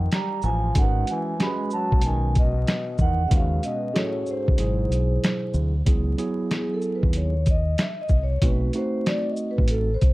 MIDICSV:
0, 0, Header, 1, 6, 480
1, 0, Start_track
1, 0, Key_signature, 4, "minor"
1, 0, Tempo, 638298
1, 572, Time_signature, 4, 2, 24, 8
1, 7622, End_track
2, 0, Start_track
2, 0, Title_t, "Vibraphone"
2, 0, Program_c, 0, 11
2, 0, Note_on_c, 0, 79, 93
2, 108, Note_on_c, 0, 82, 96
2, 112, Note_off_c, 0, 79, 0
2, 340, Note_on_c, 0, 80, 103
2, 347, Note_off_c, 0, 82, 0
2, 583, Note_off_c, 0, 80, 0
2, 587, Note_on_c, 0, 78, 95
2, 826, Note_off_c, 0, 78, 0
2, 831, Note_on_c, 0, 80, 94
2, 1068, Note_off_c, 0, 80, 0
2, 1071, Note_on_c, 0, 83, 108
2, 1302, Note_on_c, 0, 81, 104
2, 1308, Note_off_c, 0, 83, 0
2, 1543, Note_on_c, 0, 80, 94
2, 1544, Note_off_c, 0, 81, 0
2, 1784, Note_off_c, 0, 80, 0
2, 1793, Note_on_c, 0, 75, 93
2, 2264, Note_on_c, 0, 78, 105
2, 2276, Note_off_c, 0, 75, 0
2, 2465, Note_off_c, 0, 78, 0
2, 2467, Note_on_c, 0, 76, 71
2, 2499, Note_off_c, 0, 76, 0
2, 2508, Note_on_c, 0, 77, 97
2, 2744, Note_on_c, 0, 75, 96
2, 2747, Note_off_c, 0, 77, 0
2, 2979, Note_on_c, 0, 73, 91
2, 2985, Note_off_c, 0, 75, 0
2, 3222, Note_off_c, 0, 73, 0
2, 3240, Note_on_c, 0, 72, 89
2, 4156, Note_off_c, 0, 72, 0
2, 4917, Note_on_c, 0, 68, 78
2, 5067, Note_on_c, 0, 69, 73
2, 5069, Note_off_c, 0, 68, 0
2, 5224, Note_off_c, 0, 69, 0
2, 5229, Note_on_c, 0, 71, 74
2, 5385, Note_off_c, 0, 71, 0
2, 5393, Note_on_c, 0, 73, 78
2, 5629, Note_off_c, 0, 73, 0
2, 5644, Note_on_c, 0, 75, 82
2, 5874, Note_off_c, 0, 75, 0
2, 5875, Note_on_c, 0, 76, 92
2, 6026, Note_on_c, 0, 75, 88
2, 6028, Note_off_c, 0, 76, 0
2, 6168, Note_off_c, 0, 75, 0
2, 6192, Note_on_c, 0, 73, 86
2, 6346, Note_off_c, 0, 73, 0
2, 6349, Note_on_c, 0, 71, 82
2, 6587, Note_off_c, 0, 71, 0
2, 6596, Note_on_c, 0, 72, 85
2, 6808, Note_off_c, 0, 72, 0
2, 6827, Note_on_c, 0, 74, 89
2, 6969, Note_off_c, 0, 74, 0
2, 6998, Note_on_c, 0, 75, 76
2, 7149, Note_off_c, 0, 75, 0
2, 7151, Note_on_c, 0, 71, 89
2, 7298, Note_on_c, 0, 69, 87
2, 7306, Note_off_c, 0, 71, 0
2, 7460, Note_off_c, 0, 69, 0
2, 7477, Note_on_c, 0, 72, 82
2, 7622, Note_off_c, 0, 72, 0
2, 7622, End_track
3, 0, Start_track
3, 0, Title_t, "Tine electric piano"
3, 0, Program_c, 1, 4
3, 567, Note_on_c, 1, 56, 74
3, 569, Note_on_c, 1, 61, 64
3, 574, Note_on_c, 1, 66, 61
3, 576, Note_on_c, 1, 69, 63
3, 626, Note_on_c, 1, 71, 76
3, 635, Note_off_c, 1, 69, 0
3, 1001, Note_off_c, 1, 56, 0
3, 1002, Note_off_c, 1, 61, 0
3, 1004, Note_off_c, 1, 66, 0
3, 1031, Note_off_c, 1, 71, 0
3, 1046, Note_on_c, 1, 56, 73
3, 1051, Note_on_c, 1, 61, 70
3, 1052, Note_on_c, 1, 66, 67
3, 1058, Note_on_c, 1, 67, 62
3, 1104, Note_on_c, 1, 71, 84
3, 1116, Note_off_c, 1, 67, 0
3, 1906, Note_off_c, 1, 56, 0
3, 1909, Note_off_c, 1, 61, 0
3, 1910, Note_off_c, 1, 66, 0
3, 1936, Note_off_c, 1, 71, 0
3, 2484, Note_on_c, 1, 56, 67
3, 2487, Note_on_c, 1, 61, 64
3, 2492, Note_on_c, 1, 65, 53
3, 2496, Note_on_c, 1, 71, 75
3, 2539, Note_on_c, 1, 66, 59
3, 2553, Note_off_c, 1, 65, 0
3, 2919, Note_off_c, 1, 56, 0
3, 2921, Note_off_c, 1, 61, 0
3, 2926, Note_off_c, 1, 71, 0
3, 2947, Note_off_c, 1, 66, 0
3, 2960, Note_on_c, 1, 61, 71
3, 2960, Note_on_c, 1, 68, 74
3, 2966, Note_on_c, 1, 66, 73
3, 2970, Note_on_c, 1, 69, 77
3, 3446, Note_off_c, 1, 61, 0
3, 3446, Note_off_c, 1, 68, 0
3, 3449, Note_off_c, 1, 66, 0
3, 3449, Note_on_c, 1, 54, 76
3, 3451, Note_off_c, 1, 69, 0
3, 3452, Note_on_c, 1, 47, 67
3, 3454, Note_on_c, 1, 64, 66
3, 3458, Note_on_c, 1, 68, 81
3, 4308, Note_off_c, 1, 54, 0
3, 4310, Note_off_c, 1, 47, 0
3, 4311, Note_off_c, 1, 64, 0
3, 4312, Note_off_c, 1, 68, 0
3, 4402, Note_on_c, 1, 54, 75
3, 4409, Note_on_c, 1, 59, 70
3, 4412, Note_on_c, 1, 64, 68
3, 4414, Note_on_c, 1, 68, 88
3, 4623, Note_off_c, 1, 54, 0
3, 4626, Note_off_c, 1, 59, 0
3, 4628, Note_off_c, 1, 64, 0
3, 4628, Note_off_c, 1, 68, 0
3, 4644, Note_on_c, 1, 54, 83
3, 4645, Note_on_c, 1, 59, 78
3, 4650, Note_on_c, 1, 64, 77
3, 4653, Note_on_c, 1, 68, 100
3, 5506, Note_off_c, 1, 54, 0
3, 5506, Note_off_c, 1, 59, 0
3, 5509, Note_off_c, 1, 64, 0
3, 5510, Note_off_c, 1, 68, 0
3, 6327, Note_on_c, 1, 57, 69
3, 6332, Note_on_c, 1, 60, 64
3, 6334, Note_on_c, 1, 63, 64
3, 6338, Note_on_c, 1, 66, 82
3, 6545, Note_off_c, 1, 57, 0
3, 6548, Note_off_c, 1, 60, 0
3, 6549, Note_off_c, 1, 63, 0
3, 6550, Note_off_c, 1, 66, 0
3, 6571, Note_on_c, 1, 57, 78
3, 6574, Note_on_c, 1, 60, 69
3, 6577, Note_on_c, 1, 63, 70
3, 6583, Note_on_c, 1, 66, 83
3, 7429, Note_off_c, 1, 57, 0
3, 7430, Note_off_c, 1, 60, 0
3, 7432, Note_off_c, 1, 63, 0
3, 7435, Note_off_c, 1, 66, 0
3, 7622, End_track
4, 0, Start_track
4, 0, Title_t, "Trombone"
4, 0, Program_c, 2, 57
4, 0, Note_on_c, 2, 51, 90
4, 79, Note_off_c, 2, 51, 0
4, 100, Note_on_c, 2, 55, 86
4, 319, Note_off_c, 2, 55, 0
4, 333, Note_on_c, 2, 53, 94
4, 555, Note_off_c, 2, 53, 0
4, 586, Note_on_c, 2, 51, 94
4, 803, Note_off_c, 2, 51, 0
4, 825, Note_on_c, 2, 52, 88
4, 1042, Note_off_c, 2, 52, 0
4, 1066, Note_on_c, 2, 56, 93
4, 1282, Note_off_c, 2, 56, 0
4, 1305, Note_on_c, 2, 54, 93
4, 1522, Note_off_c, 2, 54, 0
4, 1540, Note_on_c, 2, 51, 90
4, 1759, Note_off_c, 2, 51, 0
4, 1788, Note_on_c, 2, 47, 85
4, 2230, Note_off_c, 2, 47, 0
4, 2256, Note_on_c, 2, 51, 81
4, 2441, Note_off_c, 2, 51, 0
4, 2447, Note_on_c, 2, 49, 72
4, 2486, Note_off_c, 2, 49, 0
4, 2495, Note_on_c, 2, 49, 80
4, 2717, Note_off_c, 2, 49, 0
4, 2740, Note_on_c, 2, 47, 80
4, 2959, Note_off_c, 2, 47, 0
4, 2977, Note_on_c, 2, 45, 83
4, 3198, Note_off_c, 2, 45, 0
4, 3210, Note_on_c, 2, 44, 77
4, 4141, Note_off_c, 2, 44, 0
4, 7622, End_track
5, 0, Start_track
5, 0, Title_t, "Fingered electric bass"
5, 0, Program_c, 3, 33
5, 327, Note_on_c, 3, 33, 96
5, 532, Note_off_c, 3, 33, 0
5, 566, Note_on_c, 3, 32, 101
5, 771, Note_off_c, 3, 32, 0
5, 1444, Note_on_c, 3, 35, 86
5, 1984, Note_off_c, 3, 35, 0
5, 2245, Note_on_c, 3, 40, 91
5, 2450, Note_off_c, 3, 40, 0
5, 2491, Note_on_c, 3, 39, 110
5, 2694, Note_off_c, 3, 39, 0
5, 3371, Note_on_c, 3, 37, 84
5, 3437, Note_off_c, 3, 37, 0
5, 3442, Note_on_c, 3, 32, 95
5, 3649, Note_off_c, 3, 32, 0
5, 3679, Note_on_c, 3, 35, 76
5, 3887, Note_off_c, 3, 35, 0
5, 4166, Note_on_c, 3, 38, 92
5, 4371, Note_off_c, 3, 38, 0
5, 4410, Note_on_c, 3, 37, 102
5, 4613, Note_off_c, 3, 37, 0
5, 5286, Note_on_c, 3, 39, 85
5, 5825, Note_off_c, 3, 39, 0
5, 6087, Note_on_c, 3, 36, 89
5, 6292, Note_off_c, 3, 36, 0
5, 6330, Note_on_c, 3, 35, 105
5, 6533, Note_off_c, 3, 35, 0
5, 7207, Note_on_c, 3, 33, 88
5, 7483, Note_off_c, 3, 33, 0
5, 7532, Note_on_c, 3, 36, 87
5, 7622, Note_off_c, 3, 36, 0
5, 7622, End_track
6, 0, Start_track
6, 0, Title_t, "Drums"
6, 88, Note_on_c, 9, 42, 71
6, 94, Note_on_c, 9, 38, 104
6, 163, Note_off_c, 9, 42, 0
6, 170, Note_off_c, 9, 38, 0
6, 315, Note_on_c, 9, 82, 53
6, 391, Note_off_c, 9, 82, 0
6, 564, Note_on_c, 9, 42, 117
6, 567, Note_on_c, 9, 36, 118
6, 639, Note_off_c, 9, 42, 0
6, 643, Note_off_c, 9, 36, 0
6, 806, Note_on_c, 9, 42, 58
6, 806, Note_on_c, 9, 82, 55
6, 881, Note_off_c, 9, 42, 0
6, 881, Note_off_c, 9, 82, 0
6, 1052, Note_on_c, 9, 42, 57
6, 1055, Note_on_c, 9, 38, 94
6, 1127, Note_off_c, 9, 42, 0
6, 1130, Note_off_c, 9, 38, 0
6, 1282, Note_on_c, 9, 82, 54
6, 1357, Note_off_c, 9, 82, 0
6, 1445, Note_on_c, 9, 36, 91
6, 1515, Note_on_c, 9, 42, 89
6, 1521, Note_off_c, 9, 36, 0
6, 1591, Note_off_c, 9, 42, 0
6, 1770, Note_on_c, 9, 42, 50
6, 1770, Note_on_c, 9, 82, 51
6, 1775, Note_on_c, 9, 36, 101
6, 1845, Note_off_c, 9, 42, 0
6, 1845, Note_off_c, 9, 82, 0
6, 1850, Note_off_c, 9, 36, 0
6, 2011, Note_on_c, 9, 42, 64
6, 2017, Note_on_c, 9, 38, 105
6, 2086, Note_off_c, 9, 42, 0
6, 2093, Note_off_c, 9, 38, 0
6, 2240, Note_on_c, 9, 82, 48
6, 2246, Note_on_c, 9, 36, 86
6, 2315, Note_off_c, 9, 82, 0
6, 2321, Note_off_c, 9, 36, 0
6, 2490, Note_on_c, 9, 42, 123
6, 2491, Note_on_c, 9, 36, 127
6, 2565, Note_off_c, 9, 42, 0
6, 2566, Note_off_c, 9, 36, 0
6, 2731, Note_on_c, 9, 42, 55
6, 2731, Note_on_c, 9, 82, 55
6, 2807, Note_off_c, 9, 42, 0
6, 2807, Note_off_c, 9, 82, 0
6, 2976, Note_on_c, 9, 42, 53
6, 2979, Note_on_c, 9, 38, 102
6, 3051, Note_off_c, 9, 42, 0
6, 3054, Note_off_c, 9, 38, 0
6, 3205, Note_on_c, 9, 82, 54
6, 3280, Note_off_c, 9, 82, 0
6, 3369, Note_on_c, 9, 36, 89
6, 3444, Note_off_c, 9, 36, 0
6, 3444, Note_on_c, 9, 42, 96
6, 3519, Note_off_c, 9, 42, 0
6, 3699, Note_on_c, 9, 42, 49
6, 3699, Note_on_c, 9, 82, 55
6, 3774, Note_off_c, 9, 42, 0
6, 3774, Note_off_c, 9, 82, 0
6, 3938, Note_on_c, 9, 42, 73
6, 3945, Note_on_c, 9, 38, 99
6, 4013, Note_off_c, 9, 42, 0
6, 4020, Note_off_c, 9, 38, 0
6, 4164, Note_on_c, 9, 82, 49
6, 4239, Note_off_c, 9, 82, 0
6, 4410, Note_on_c, 9, 36, 114
6, 4410, Note_on_c, 9, 42, 115
6, 4485, Note_off_c, 9, 42, 0
6, 4486, Note_off_c, 9, 36, 0
6, 4650, Note_on_c, 9, 42, 53
6, 4650, Note_on_c, 9, 82, 54
6, 4726, Note_off_c, 9, 42, 0
6, 4726, Note_off_c, 9, 82, 0
6, 4894, Note_on_c, 9, 42, 58
6, 4898, Note_on_c, 9, 38, 101
6, 4969, Note_off_c, 9, 42, 0
6, 4973, Note_off_c, 9, 38, 0
6, 5125, Note_on_c, 9, 82, 50
6, 5200, Note_off_c, 9, 82, 0
6, 5287, Note_on_c, 9, 36, 88
6, 5363, Note_off_c, 9, 36, 0
6, 5363, Note_on_c, 9, 42, 93
6, 5438, Note_off_c, 9, 42, 0
6, 5610, Note_on_c, 9, 42, 50
6, 5610, Note_on_c, 9, 82, 52
6, 5616, Note_on_c, 9, 36, 89
6, 5685, Note_off_c, 9, 42, 0
6, 5685, Note_off_c, 9, 82, 0
6, 5691, Note_off_c, 9, 36, 0
6, 5851, Note_on_c, 9, 42, 69
6, 5857, Note_on_c, 9, 38, 100
6, 5926, Note_off_c, 9, 42, 0
6, 5933, Note_off_c, 9, 38, 0
6, 6079, Note_on_c, 9, 82, 51
6, 6086, Note_on_c, 9, 36, 81
6, 6154, Note_off_c, 9, 82, 0
6, 6161, Note_off_c, 9, 36, 0
6, 6329, Note_on_c, 9, 36, 119
6, 6329, Note_on_c, 9, 42, 112
6, 6404, Note_off_c, 9, 36, 0
6, 6404, Note_off_c, 9, 42, 0
6, 6567, Note_on_c, 9, 42, 50
6, 6567, Note_on_c, 9, 82, 51
6, 6642, Note_off_c, 9, 42, 0
6, 6642, Note_off_c, 9, 82, 0
6, 6816, Note_on_c, 9, 42, 60
6, 6820, Note_on_c, 9, 38, 101
6, 6891, Note_off_c, 9, 42, 0
6, 6895, Note_off_c, 9, 38, 0
6, 7042, Note_on_c, 9, 82, 54
6, 7117, Note_off_c, 9, 82, 0
6, 7206, Note_on_c, 9, 36, 85
6, 7276, Note_on_c, 9, 42, 83
6, 7281, Note_off_c, 9, 36, 0
6, 7351, Note_off_c, 9, 42, 0
6, 7531, Note_on_c, 9, 42, 49
6, 7531, Note_on_c, 9, 82, 50
6, 7534, Note_on_c, 9, 36, 98
6, 7606, Note_off_c, 9, 42, 0
6, 7606, Note_off_c, 9, 82, 0
6, 7609, Note_off_c, 9, 36, 0
6, 7622, End_track
0, 0, End_of_file